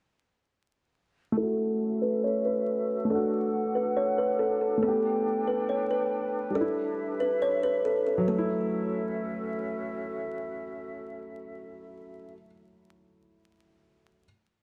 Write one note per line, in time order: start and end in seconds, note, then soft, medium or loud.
1.32 3.03 A3 medium
1.37 3.08 C#4 medium
1.37 3.07 E4 medium
1.37 4.79 F#4 medium
1.37 1.78 A4 loud
1.37 4.79 A4 medium
1.37 3.08 E5 medium
1.43 3.09 F#4 medium
2.02 2.22 B4 medium
2.24 2.43 C#5 medium
2.46 3.06 B4 medium
3.05 4.76 A3 medium
3.10 4.79 D4 medium
3.10 8.24 D4 medium
3.10 3.51 A4 medium
3.10 4.81 F#5 medium
3.15 4.82 F#4 medium
3.75 3.95 B4 medium
3.97 4.16 C#5 medium
4.18 4.38 B4 medium
4.39 4.59 A4 medium
4.61 4.81 A4 medium
4.78 6.49 A3 medium
4.83 6.52 B3 medium
4.83 5.23 A4 loud
4.83 6.54 A4 medium
4.83 8.25 B4 medium
4.83 6.54 G5 medium
4.88 6.55 G4 medium
5.48 5.67 B4 medium
5.69 5.89 C#5 medium
5.91 6.52 B4 medium
6.50 8.22 G3 medium
6.55 8.25 D4 medium
6.55 8.26 G4 medium
6.55 6.96 A4 loud
6.55 8.26 E5 medium
6.61 8.27 E4 medium
7.20 7.40 B4 medium
7.42 7.62 C#5 medium
7.63 7.83 B4 medium
7.85 8.05 A4 medium
8.07 8.26 A4 medium
8.18 12.24 F#3 medium
8.28 12.34 A3 medium
8.28 12.34 C#4 medium
8.28 12.34 F#4 medium
8.28 12.34 A4 medium
8.28 9.54 A4 medium
8.28 12.34 E5 medium
8.38 12.44 E4 medium